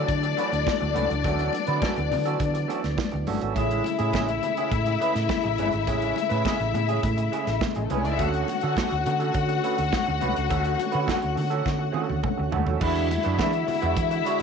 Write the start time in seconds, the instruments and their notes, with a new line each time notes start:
Already playing: tonewheel organ E3 F#3 A3 D4, string section D4 D5
0.09 fingered electric bass D3, muted clean electric guitar stroke, kick, closed hi-hat
0.23 muted clean electric guitar stroke, closed hi-hat
0.37 clean electric guitar A3 C#4 F#4 B4, closed hi-hat
0.52 fingered electric bass D2, muted clean electric guitar stroke, closed hi-hat
0.67 kick, snare, high conga
0.80 fingered electric bass D2, muted clean electric guitar stroke, closed hi-hat
0.94 fingered electric bass C2, clean electric guitar A3 C#4 F#4 B4, closed hi-hat, high conga
1.10 fingered electric bass C#2, muted clean electric guitar stroke, closed hi-hat
1.24 fingered electric bass D2, clean electric guitar A3 C#4 F#4 A4, tonewheel organ B3, kick, closed hi-hat, muted conga
1.39 closed hi-hat
1.53 muted clean electric guitar stroke, closed hi-hat, muted conga
1.67 fingered electric bass D3, clean electric guitar A3 C#4 F#4 B4, closed hi-hat
1.82 clean electric guitar A3 C#4 F#4 A4, kick, snare, high conga
1.96 fingered electric bass D2, muted clean electric guitar stroke, closed hi-hat
2.12 fingered electric bass D3, muted clean electric guitar stroke, open hi-hat, muted conga, low conga
2.26 clean electric guitar A3 C#4 F#4 A4, closed hi-hat
2.40 fingered electric bass D3, muted clean electric guitar stroke, kick, closed hi-hat, low conga
2.54 muted clean electric guitar stroke, closed hi-hat
2.68 clean electric guitar A3 C#4 F#4 A4, closed hi-hat
2.83 fingered electric bass D2, muted clean electric guitar stroke, snare, closed hi-hat
2.97 muted clean electric guitar stroke, kick, snare, high conga
3.11 fingered electric bass D2, muted clean electric guitar stroke, closed hi-hat
3.27 fingered electric bass G1, clean electric guitar A3 C#4 F#4 A4, open hi-hat, high conga
3.41 fingered electric bass G#1, clean electric guitar A3 C#4 F#4 A4, closed hi-hat
3.55 fingered electric bass A1, tonewheel organ C#3 G#3 A3 E4, clean electric guitar G#3 C#4 E4 G#4, string section E4 E5, kick, closed hi-hat, muted conga
3.71 closed hi-hat
3.84 muted clean electric guitar stroke, closed hi-hat, muted conga
3.99 fingered electric bass A2, clean electric guitar G#3 C#4 E4 G#4, closed hi-hat
4.13 fingered electric bass A1, clean electric guitar G#3 C#4 E4 G#4, kick, snare, high conga
4.28 muted clean electric guitar stroke, closed hi-hat
4.43 muted clean electric guitar stroke, closed hi-hat, muted conga, low conga
4.57 clean electric guitar G#3 C#4 E4 G#4, closed hi-hat
4.71 fingered electric bass A2, muted clean electric guitar stroke, kick, closed hi-hat
4.86 muted clean electric guitar stroke, closed hi-hat
5.00 clean electric guitar G#3 C#4 E4 B4, closed hi-hat
5.15 fingered electric bass A2, muted clean electric guitar stroke, snare, closed hi-hat
5.29 kick, snare, high conga
5.42 fingered electric bass A1, muted clean electric guitar stroke, closed hi-hat
5.58 fingered electric bass G1, clean electric guitar G#3 C#4 E4 B4, closed hi-hat, high conga
5.73 fingered electric bass G#1, muted clean electric guitar stroke, closed hi-hat
5.87 fingered electric bass A1, clean electric guitar G#3 C#4 E4 G#4, kick, closed hi-hat, muted conga
6.02 closed hi-hat
6.16 muted clean electric guitar stroke, closed hi-hat, muted conga
6.29 fingered electric bass A2, clean electric guitar G#3 C#4 E4 B4, closed hi-hat
6.45 clean electric guitar G#3 C#4 E4 G#4, kick, snare, high conga
6.59 fingered electric bass A1, muted clean electric guitar stroke, closed hi-hat
6.74 fingered electric bass A2, muted clean electric guitar stroke, closed hi-hat, low conga
6.89 clean electric guitar G#3 C#4 E4 G#4, closed hi-hat
7.03 fingered electric bass A2, muted clean electric guitar stroke, kick, closed hi-hat, low conga
7.17 muted clean electric guitar stroke, closed hi-hat
7.32 clean electric guitar G#3 C#4 E4 G#4, closed hi-hat
7.46 fingered electric bass A1, muted clean electric guitar stroke, snare, closed hi-hat
7.61 muted clean electric guitar stroke, kick, snare, high conga
7.75 fingered electric bass A1, string section G#3 G#4, muted clean electric guitar stroke, closed hi-hat
7.84 string section A3 A4
7.90 fingered electric bass C2, clean electric guitar G#3 C#4 E4 G#4, string section B3 B4, closed hi-hat, high conga
7.98 string section C#4 C#5
8.04 fingered electric bass C#2, clean electric guitar G#3 C#4 E4 G#4, string section D4 D5, closed hi-hat
8.12 string section E4 E5
8.19 fingered electric bass D2, tonewheel organ D3 C#4 F#4, clean electric guitar A3 C#4 F#4 A4, string section F#4 F#5, kick, closed hi-hat, muted conga
8.34 closed hi-hat
8.48 muted clean electric guitar stroke, closed hi-hat, muted conga
8.61 fingered electric bass D3, clean electric guitar A3 C#4 F#4 A4, closed hi-hat
8.76 clean electric guitar A3 C#4 F#4 A4, kick, snare, high conga
8.91 fingered electric bass D2, muted clean electric guitar stroke, closed hi-hat
9.06 fingered electric bass D3, muted clean electric guitar stroke, closed hi-hat, muted conga, low conga
9.20 clean electric guitar A3 C#4 F#4 A4, closed hi-hat
9.34 fingered electric bass D3, muted clean electric guitar stroke, kick, closed hi-hat
9.49 muted clean electric guitar stroke, closed hi-hat
9.64 clean electric guitar A3 C#4 F#4 B4, closed hi-hat
9.77 fingered electric bass D2, muted clean electric guitar stroke, closed hi-hat
9.93 kick, snare, high conga
10.06 fingered electric bass D2, muted clean electric guitar stroke, closed hi-hat
10.21 fingered electric bass C2, clean electric guitar A3 C#4 F#4 B4, closed hi-hat, high conga
10.36 fingered electric bass C#2, muted clean electric guitar stroke, closed hi-hat
10.49 fingered electric bass D2, clean electric guitar A3 C#4 F#4 A4, kick, closed hi-hat, muted conga
10.64 closed hi-hat
10.78 muted clean electric guitar stroke, closed hi-hat, muted conga
10.92 fingered electric bass D3, clean electric guitar A3 C#4 F#4 B4, closed hi-hat
11.06 clean electric guitar A3 C#4 F#4 A4, kick, snare, high conga
11.21 fingered electric bass D2, muted clean electric guitar stroke, closed hi-hat
11.35 fingered electric bass D3, muted clean electric guitar stroke, open hi-hat, muted conga, low conga
11.50 clean electric guitar A3 C#4 F#4 A4, closed hi-hat
11.65 fingered electric bass D3, muted clean electric guitar stroke, kick, snare, low conga
11.79 muted clean electric guitar stroke
11.92 clean electric guitar A3 C#4 F#4 A4, high tom
12.08 fingered electric bass D2, muted clean electric guitar stroke, high tom
12.23 muted clean electric guitar stroke, kick, mid tom, high conga
12.38 fingered electric bass D2, muted clean electric guitar stroke
12.52 fingered electric bass D2, clean electric guitar A3 C#4 F#4 A4, floor tom, high conga
12.66 fingered electric bass D#2, clean electric guitar A3 C#4 F#4 A4, floor tom
12.80 fingered electric bass E2, tonewheel organ D3 G#3 E4 F#4, clean electric guitar G#3 D4 F#4 B4, string section E4 E5, kick, crash, muted conga
12.95 closed hi-hat
13.10 muted clean electric guitar stroke, closed hi-hat, muted conga
13.23 fingered electric bass F#2, clean electric guitar G#3 D4 F#4 B4, closed hi-hat
13.38 fingered electric bass E3, clean electric guitar G#3 D4 F#4 B4, kick, snare, high conga
13.53 muted clean electric guitar stroke, closed hi-hat
13.67 muted clean electric guitar stroke, open hi-hat, muted conga, low conga
13.82 fingered electric bass E2, clean electric guitar G#3 D4 F#4 B4, closed hi-hat
13.96 fingered electric bass E3, muted clean electric guitar stroke, kick, closed hi-hat
14.11 muted clean electric guitar stroke, closed hi-hat
14.25 clean electric guitar G#3 D4 F#4 C#5, closed hi-hat